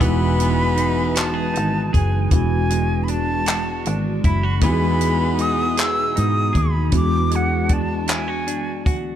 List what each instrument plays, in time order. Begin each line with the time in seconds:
Already playing: analog synth pad E3 G#3 B3
0.00 fingered electric bass E1, tine electric piano E3 B3 D#4 F#4, clean electric guitar E3, horn section E3 G#3 B3, analog synth pad D#4 B4, flute B5, kick, closed hi-hat
0.05 tine electric piano G#3
0.39 clean electric guitar B3, closed hi-hat
0.77 clean electric guitar D#4, closed hi-hat
1.15 clean electric guitar F#4, flute A5, clap, closed hi-hat
1.34 clean electric guitar G#4
1.54 fingered electric bass G#1, clean electric guitar D#4, closed hi-hat
1.93 fingered electric bass F#1, clean electric guitar G#4, flute G#5, kick, closed hi-hat
2.29 fingered electric bass E1, tine electric piano E3 B3 D4, clean electric guitar E3, analog synth pad G#3 D4 F#4, kick, closed hi-hat
2.34 tine electric piano G#3 F#4, flute G#5
2.70 clean electric guitar G#3, closed hi-hat
3.04 flute B5
3.08 clean electric guitar D4, flute A5, closed hi-hat
3.46 clean electric guitar F#4, clap, closed hi-hat
3.85 fingered electric bass G#1, clean electric guitar D4, closed hi-hat
4.24 fingered electric bass F#1, clean electric guitar E4, flute B5, kick, closed hi-hat
4.43 clean electric guitar F#4
4.59 fingered electric bass E2, analog synth pad B2 B3 D#4 G#4, horn section E3 G#3 B3, tine electric piano G#3 B3 D#4, kick, closed hi-hat
4.63 clean electric guitar E3, tine electric piano F#4 G4, flute B5
4.73 tine electric piano G#4
5.01 clean electric guitar B3, closed hi-hat
5.39 clean electric guitar D#4, flute D#6, closed hi-hat
5.77 clean electric guitar G#4, flute E6, clap, closed hi-hat
6.16 fingered electric bass G#2, clean electric guitar D#4, flute D#6, closed hi-hat
6.53 fingered electric bass D#2, clean electric guitar G#4, kick, closed hi-hat
6.58 flute B5
6.90 fingered electric bass E2, tine electric piano E3 B3 D4, analog synth pad E3 G#3 D4 F#4, clean electric guitar E3, kick, closed hi-hat
6.95 tine electric piano G#3 F#4, flute D6
7.31 clean electric guitar G#3, closed hi-hat
7.36 flute F#5
7.69 clean electric guitar D4, kick, closed hi-hat
7.73 flute A5
8.08 clean electric guitar E4, flute G#5, clap, closed hi-hat
8.28 clean electric guitar F#4
8.47 fingered electric bass F#2, clean electric guitar D4, closed hi-hat
8.86 fingered electric bass D2, clean electric guitar F#4, kick, closed hi-hat